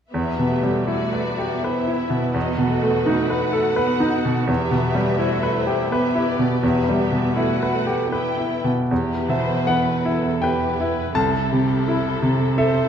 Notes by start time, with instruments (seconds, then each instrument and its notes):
0.12 grand piano E2, viola section B3 G4, violin section B4 E5
0.39 grand piano B2
0.50 viola section A3
0.63 grand piano G3
0.87 viola section A3 F#4, grand piano E4, violin section D5 E5
1.13 grand piano B4
1.25 viola section B3
1.39 grand piano G4
1.61 viola section E4, grand piano B4, violin section C5
1.88 grand piano E4
1.98 violin section B4
2.10 grand piano B2
2.34 grand piano E2, viola section B3 F#4, violin section D#5
2.58 grand piano B2
2.70 viola section A3
2.82 grand piano A3
3.06 viola section A3, grand piano D#4, violin section F#5
3.30 grand piano B4
3.53 grand piano A4
3.76 viola section B3 F#4, grand piano B4
4.00 grand piano D#4
4.13 viola section B3
4.25 grand piano B2
4.47 grand piano E2, viola section G4, violin section B4 E5
4.71 grand piano B2
4.85 viola section G4
4.95 grand piano G3
5.19 viola section A3 F#4, grand piano E4, violin section C5
5.43 grand piano B4
5.55 viola section E4
5.67 grand piano G4
5.91 viola section B3 G4, violin section B4 E5, grand piano B4
6.15 grand piano E4
6.28 violin section D5
6.39 grand piano B2
6.62 grand piano E2, viola section B3 G4, violin section B4 E5
6.89 grand piano G3
6.98 violin section B4
7.11 grand piano B2
7.35 viola section A3 F#4, grand piano E4, violin section F#5
7.63 grand piano B4
7.73 viola section A3
7.87 grand piano G4
8.10 viola section B3 E4, violin section B4 G5, grand piano B4
8.38 grand piano E4
8.64 grand piano B2
8.91 cello section E2, grand piano E2, violin section E4 B4, viola section G4
9.29 grand piano B2 E5, viola section C5
9.66 grand piano B3 F#5, viola section B4
10.05 grand piano E4, viola section A4
10.41 violin section E4 B4, viola section G4, grand piano B4 G5
10.78 grand piano E4, viola section B4
11.14 grand piano C2 A5, cello section C3, violin section E4 A4, viola section A4
11.51 grand piano C3, viola section G4
11.87 grand piano E4, viola section A4
12.22 grand piano C3
12.58 violin section E4 A4, grand piano A4 E5, viola section C5